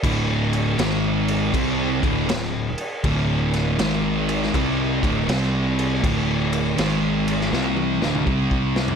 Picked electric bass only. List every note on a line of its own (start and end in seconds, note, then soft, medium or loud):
0.04 0.74 D1 loud
0.80 1.50 G#1 loud
1.54 1.99 C2 loud
2.03 2.27 D1 loud
2.30 2.74 D1 medium
3.04 3.74 D1 loud
3.79 4.50 G#1 loud
4.55 4.99 C2 loud
5.03 5.27 D1 loud
5.28 5.99 C2 medium
6.04 6.74 D1 medium
6.79 7.49 G#1 medium
7.53 7.98 C2 loud
8.02 8.26 D1 medium
8.27 8.96 C2 medium